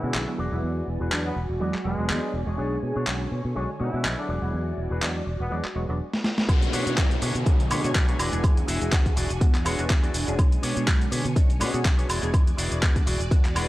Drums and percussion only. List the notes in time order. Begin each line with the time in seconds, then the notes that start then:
0.14 clap
1.12 clap
1.74 clap
2.10 clap
3.07 clap
4.05 clap
5.02 clap
5.65 clap
6.14 snare
6.24 snare
6.38 snare
6.49 kick, closed hi-hat, high woodblock, shaker
6.62 closed hi-hat, shaker
6.73 open hi-hat, shaker
6.87 closed hi-hat, shaker
6.97 kick, clap, closed hi-hat, shaker
7.11 closed hi-hat, shaker
7.22 open hi-hat, shaker
7.35 closed hi-hat, shaker
7.46 kick, closed hi-hat, shaker
7.60 closed hi-hat, shaker
7.71 open hi-hat, high woodblock, shaker
7.84 closed hi-hat, shaker
7.95 kick, clap, closed hi-hat, shaker
8.08 closed hi-hat, shaker
8.19 open hi-hat, high woodblock, shaker
8.33 closed hi-hat, shaker
8.44 kick, closed hi-hat, high woodblock, shaker
8.57 closed hi-hat, shaker
8.68 open hi-hat, shaker
8.82 closed hi-hat, shaker
8.92 kick, clap, closed hi-hat, shaker
9.06 kick, closed hi-hat, shaker
9.17 open hi-hat, shaker
9.30 closed hi-hat, shaker
9.41 kick, closed hi-hat, shaker
9.55 clap, closed hi-hat, shaker
9.66 open hi-hat, high woodblock, shaker
9.79 closed hi-hat, shaker
9.90 kick, clap, closed hi-hat, shaker
10.04 closed hi-hat, shaker
10.14 open hi-hat, shaker
10.28 closed hi-hat, shaker
10.39 kick, closed hi-hat, high woodblock, shaker
10.52 closed hi-hat, shaker
10.63 open hi-hat, shaker
10.77 closed hi-hat, shaker
10.87 kick, clap, closed hi-hat, shaker
11.01 closed hi-hat, shaker
11.12 open hi-hat, shaker
11.25 closed hi-hat, shaker
11.36 kick, closed hi-hat, shaker
11.50 closed hi-hat, shaker
11.61 open hi-hat, high woodblock, shaker
11.74 closed hi-hat, shaker
11.85 kick, clap, closed hi-hat, shaker
11.99 closed hi-hat, shaker
12.10 open hi-hat, high woodblock, shaker
12.23 closed hi-hat, shaker
12.34 kick, closed hi-hat, high woodblock, shaker
12.47 closed hi-hat, shaker
12.58 open hi-hat, shaker
12.72 closed hi-hat, shaker
12.82 kick, clap, closed hi-hat, shaker
12.96 kick, closed hi-hat, shaker
13.07 open hi-hat, shaker
13.21 closed hi-hat, shaker
13.31 kick, closed hi-hat, shaker
13.45 clap, closed hi-hat, shaker
13.56 open hi-hat, high woodblock, shaker